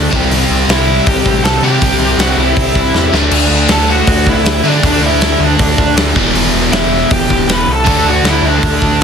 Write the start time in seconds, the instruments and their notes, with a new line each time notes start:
Already playing: overdriven electric guitar D3 A3 D4
0.11 analog synth bass C2, overdriven electric guitar C3 G3, kick
0.15 overdriven electric guitar C4
0.30 analog synth bass C2, open hi-hat
0.50 analog synth bass C2
0.68 analog synth bass C2, lead electric guitar E4 E5, snare, open hi-hat
1.06 analog synth bass C2, lead electric guitar G4 G5, kick, open hi-hat
1.26 analog synth bass A1, kick
1.44 analog synth bass C2, lead electric guitar A4 A5, snare, open hi-hat
1.62 analog synth bass C3, overdriven electric guitar C3 G3, lead electric guitar G4 G5
1.67 overdriven electric guitar C4
1.82 analog synth bass C2, kick, open hi-hat
1.99 analog synth bass C2
2.18 analog synth bass C2, lead electric guitar F#4 F#5, snare, open hi-hat
2.37 analog synth bass C2, lead electric guitar E4 E5
2.56 analog synth bass C2, kick, open hi-hat
2.75 analog synth bass C2, kick
2.94 analog synth bass E2, snare
3.13 analog synth bass D2, overdriven electric guitar D3 A3, snare
3.17 overdriven electric guitar D4
3.31 analog synth bass D2, crash
3.50 analog synth bass D2
3.68 analog synth bass D2, lead electric guitar A4 A5, snare, open hi-hat
3.89 lead electric guitar F#4 F#5
4.07 analog synth bass D2, kick, open hi-hat
4.26 analog synth bass C2, lead electric guitar E4, kick
4.32 lead electric guitar E5
4.44 analog synth bass D2, snare, open hi-hat
4.63 analog synth bass D3, overdriven electric guitar D3 A3, lead electric guitar D4
4.67 overdriven electric guitar D4, lead electric guitar D5
4.83 analog synth bass D2, lead electric guitar D4, kick, open hi-hat
4.88 lead electric guitar D5
5.01 analog synth bass D2, lead electric guitar E4
5.06 lead electric guitar E5
5.19 analog synth bass D2, snare
5.40 analog synth bass D2, lead electric guitar D4 D5
5.59 analog synth bass D2, kick, open hi-hat
5.78 analog synth bass D2, kick
5.96 analog synth bass D2, snare, open hi-hat
6.15 analog synth bass E1, overdriven electric guitar E2 B2 E3, kick
6.34 analog synth bass E1, open hi-hat
6.53 analog synth bass E1
6.71 analog synth bass E1, lead electric guitar E4 E5, snare, open hi-hat
7.11 analog synth bass E1, lead electric guitar G4 G5, kick, open hi-hat
7.30 analog synth bass D1, kick
7.48 analog synth bass E1, lead electric guitar B4, snare, open hi-hat
7.53 lead electric guitar B5
7.67 analog synth bass C2, lead electric guitar A4
7.72 lead electric guitar A5
7.85 analog synth bass D2, overdriven electric guitar D3 A3 D4, kick, open hi-hat
8.04 analog synth bass D2, lead electric guitar F#4
8.10 lead electric guitar F#5
8.24 analog synth bass D2, lead electric guitar E4, snare, open hi-hat
8.30 lead electric guitar E5
8.42 analog synth bass D2
8.47 lead electric guitar D4 D5
8.62 analog synth bass D2, kick, open hi-hat
8.82 analog synth bass D2, kick
9.00 analog synth bass D2